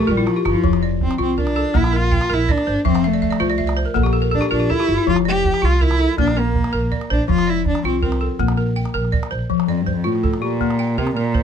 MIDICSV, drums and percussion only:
0, 0, Header, 1, 2, 480
1, 0, Start_track
1, 0, Key_signature, -1, "major"
1, 0, Tempo, 369231
1, 828, Time_signature, 12, 3, 24, 8
1, 14859, End_track
2, 0, Start_track
2, 0, Title_t, "Calabash"
2, 105, Note_on_c, 9, 36, 33
2, 235, Note_off_c, 9, 36, 0
2, 351, Note_on_c, 9, 38, 47
2, 481, Note_off_c, 9, 38, 0
2, 594, Note_on_c, 9, 38, 51
2, 724, Note_off_c, 9, 38, 0
2, 836, Note_on_c, 9, 36, 72
2, 951, Note_on_c, 9, 38, 58
2, 966, Note_off_c, 9, 36, 0
2, 1081, Note_off_c, 9, 38, 0
2, 1316, Note_on_c, 9, 36, 65
2, 1439, Note_on_c, 9, 38, 54
2, 1446, Note_off_c, 9, 36, 0
2, 1569, Note_off_c, 9, 38, 0
2, 1794, Note_on_c, 9, 36, 69
2, 1908, Note_on_c, 9, 38, 54
2, 1924, Note_off_c, 9, 36, 0
2, 2033, Note_off_c, 9, 38, 0
2, 2033, Note_on_c, 9, 38, 23
2, 2163, Note_off_c, 9, 38, 0
2, 2272, Note_on_c, 9, 36, 74
2, 2272, Note_on_c, 9, 38, 23
2, 2393, Note_off_c, 9, 38, 0
2, 2393, Note_on_c, 9, 38, 55
2, 2402, Note_off_c, 9, 36, 0
2, 2523, Note_off_c, 9, 38, 0
2, 2753, Note_on_c, 9, 36, 69
2, 2875, Note_on_c, 9, 38, 56
2, 2883, Note_off_c, 9, 36, 0
2, 3005, Note_off_c, 9, 38, 0
2, 3233, Note_on_c, 9, 36, 68
2, 3349, Note_on_c, 9, 38, 53
2, 3363, Note_off_c, 9, 36, 0
2, 3479, Note_off_c, 9, 38, 0
2, 3712, Note_on_c, 9, 36, 70
2, 3840, Note_on_c, 9, 38, 55
2, 3842, Note_off_c, 9, 36, 0
2, 3970, Note_off_c, 9, 38, 0
2, 4191, Note_on_c, 9, 36, 65
2, 4321, Note_off_c, 9, 36, 0
2, 4322, Note_on_c, 9, 38, 54
2, 4452, Note_off_c, 9, 38, 0
2, 4554, Note_on_c, 9, 38, 20
2, 4673, Note_on_c, 9, 36, 62
2, 4684, Note_off_c, 9, 38, 0
2, 4798, Note_on_c, 9, 38, 55
2, 4803, Note_off_c, 9, 36, 0
2, 4925, Note_off_c, 9, 38, 0
2, 4925, Note_on_c, 9, 38, 21
2, 5055, Note_off_c, 9, 38, 0
2, 5161, Note_on_c, 9, 36, 67
2, 5161, Note_on_c, 9, 38, 21
2, 5282, Note_off_c, 9, 38, 0
2, 5282, Note_on_c, 9, 38, 54
2, 5291, Note_off_c, 9, 36, 0
2, 5412, Note_off_c, 9, 38, 0
2, 5634, Note_on_c, 9, 36, 62
2, 5747, Note_on_c, 9, 38, 52
2, 5764, Note_off_c, 9, 36, 0
2, 5877, Note_off_c, 9, 38, 0
2, 6117, Note_on_c, 9, 36, 68
2, 6239, Note_on_c, 9, 38, 51
2, 6247, Note_off_c, 9, 36, 0
2, 6369, Note_off_c, 9, 38, 0
2, 6599, Note_on_c, 9, 36, 65
2, 6712, Note_on_c, 9, 38, 52
2, 6729, Note_off_c, 9, 36, 0
2, 6842, Note_off_c, 9, 38, 0
2, 7076, Note_on_c, 9, 36, 61
2, 7198, Note_on_c, 9, 38, 53
2, 7206, Note_off_c, 9, 36, 0
2, 7328, Note_off_c, 9, 38, 0
2, 7560, Note_on_c, 9, 36, 63
2, 7681, Note_on_c, 9, 38, 50
2, 7690, Note_off_c, 9, 36, 0
2, 7804, Note_off_c, 9, 38, 0
2, 7804, Note_on_c, 9, 38, 19
2, 7934, Note_off_c, 9, 38, 0
2, 8038, Note_on_c, 9, 36, 67
2, 8038, Note_on_c, 9, 38, 20
2, 8159, Note_off_c, 9, 38, 0
2, 8159, Note_on_c, 9, 38, 52
2, 8168, Note_off_c, 9, 36, 0
2, 8289, Note_off_c, 9, 38, 0
2, 8517, Note_on_c, 9, 36, 64
2, 8636, Note_on_c, 9, 38, 49
2, 8647, Note_off_c, 9, 36, 0
2, 8766, Note_off_c, 9, 38, 0
2, 8995, Note_on_c, 9, 36, 63
2, 9118, Note_on_c, 9, 38, 48
2, 9125, Note_off_c, 9, 36, 0
2, 9248, Note_off_c, 9, 38, 0
2, 9484, Note_on_c, 9, 36, 65
2, 9484, Note_on_c, 9, 38, 21
2, 9600, Note_off_c, 9, 38, 0
2, 9600, Note_on_c, 9, 38, 52
2, 9614, Note_off_c, 9, 36, 0
2, 9719, Note_off_c, 9, 38, 0
2, 9719, Note_on_c, 9, 38, 20
2, 9849, Note_off_c, 9, 38, 0
2, 9958, Note_on_c, 9, 36, 58
2, 10077, Note_on_c, 9, 38, 52
2, 10088, Note_off_c, 9, 36, 0
2, 10207, Note_off_c, 9, 38, 0
2, 10430, Note_on_c, 9, 36, 63
2, 10557, Note_on_c, 9, 38, 55
2, 10560, Note_off_c, 9, 36, 0
2, 10687, Note_off_c, 9, 38, 0
2, 10910, Note_on_c, 9, 36, 66
2, 10910, Note_on_c, 9, 38, 22
2, 11029, Note_off_c, 9, 38, 0
2, 11029, Note_on_c, 9, 38, 56
2, 11040, Note_off_c, 9, 36, 0
2, 11159, Note_off_c, 9, 38, 0
2, 11511, Note_on_c, 9, 38, 50
2, 11636, Note_off_c, 9, 38, 0
2, 11636, Note_on_c, 9, 38, 20
2, 11759, Note_off_c, 9, 38, 0
2, 11759, Note_on_c, 9, 38, 22
2, 11873, Note_on_c, 9, 36, 73
2, 11889, Note_off_c, 9, 38, 0
2, 11999, Note_on_c, 9, 38, 55
2, 12003, Note_off_c, 9, 36, 0
2, 12129, Note_off_c, 9, 38, 0
2, 12357, Note_on_c, 9, 36, 54
2, 12476, Note_on_c, 9, 38, 46
2, 12487, Note_off_c, 9, 36, 0
2, 12606, Note_off_c, 9, 38, 0
2, 12838, Note_on_c, 9, 36, 52
2, 12968, Note_off_c, 9, 36, 0
2, 13198, Note_on_c, 9, 38, 19
2, 13315, Note_on_c, 9, 36, 61
2, 13328, Note_off_c, 9, 38, 0
2, 13436, Note_on_c, 9, 38, 47
2, 13445, Note_off_c, 9, 36, 0
2, 13555, Note_off_c, 9, 38, 0
2, 13555, Note_on_c, 9, 38, 19
2, 13685, Note_off_c, 9, 38, 0
2, 13791, Note_on_c, 9, 36, 59
2, 13791, Note_on_c, 9, 38, 20
2, 13917, Note_off_c, 9, 38, 0
2, 13917, Note_on_c, 9, 38, 48
2, 13921, Note_off_c, 9, 36, 0
2, 14047, Note_off_c, 9, 38, 0
2, 14270, Note_on_c, 9, 36, 62
2, 14389, Note_on_c, 9, 38, 49
2, 14400, Note_off_c, 9, 36, 0
2, 14519, Note_off_c, 9, 38, 0
2, 14752, Note_on_c, 9, 36, 67
2, 14859, Note_off_c, 9, 36, 0
2, 14859, End_track
0, 0, End_of_file